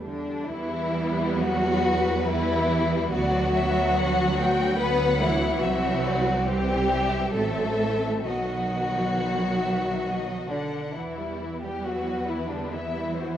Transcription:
Already playing: E2
0.02 D3 G3 D4
0.49 E2 E3 G3 B3 E4
1.37 F#3 F#4 B4
2.26 E3 G3 B3 E4
3.11 D2 F#3 B3 F#4 D5
3.53 E5
3.95 F#5
4.38 G5
4.80 F#3 B3 B4 F#5
5.21 E3 E4
5.63 C2 E3 F#3 C4 F#4 E5
6.05 D5
6.46 E3 G3 C4 G4 C5
6.90 E5
7.33 A1 F#3 A3 C4 A4 E5
7.80 E3
8.24 B1 D#3 F#3 B3 F#4 D#5
9.15 F#5
9.60 E5
10.06 D#5
10.50 D3 D4 F#5
10.95 E2 E3 B3 E4
11.18 G3
11.42 E3
11.63 G3 G4
11.85 E3 F#3 F#4 B4
12.08 G3
12.29 E3 E4
12.49 D3 G3 D4
12.71 E3 E4 E5
12.94 G3
13.15 E3 C5
13.22 F#4
13.30 E4

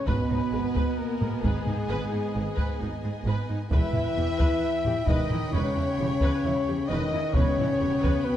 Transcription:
0.06 G#1 G#2 B2 B3 B4 D#5 G#5, taiko
0.30 G#2 D#4, taiko low-mid
0.52 G#1 G#2 G#4
0.75 G#2 B4, taiko
0.97 B2 A#3 A#4
1.20 G#2 G#4, taiko low-mid
1.43 G#1 G#2 G#3 G#4 B4, taiko
1.66 G#2 D#4, taiko low-mid
1.89 G#1 G#2 B4
2.11 G#2 D#4
2.35 G#1 G#2 G#4
2.57 G#2 B4, taiko
2.80 G#1 G#2 D#4
3.03 G#2 G#4
3.26 G#1 G#2 B4
3.49 G#2 D#4
3.71 E1 E2 E3 E4 B4 E5 G5 B5, taiko
3.94 E2 E4, taiko low-mid
4.17 E1 E2 G4
4.40 E2 B4, taiko
4.84 E2 G4, taiko low-mid
5.06 E1 E2 D#3 D#4 B4 D#5, taiko
5.30 E2 E4, taiko low-mid
5.52 E1 E2 C#3 C#4 B4 C#5
5.77 E2 E4
5.99 E1 E2 G4
6.20 E2 B4, taiko
6.44 E1 E2 E4
6.67 E2 G4
6.87 E1 E2 D#3 D#4 B4 D#5
7.12 E2 E4
7.33 E1 E2 C#3 B3 C#4 B4 C#5 G5 B5, taiko
7.57 E2 E4, taiko low-mid
7.81 E1 E2 G4
8.02 E2 B4, taiko
8.24 B2 B4
8.29 B3

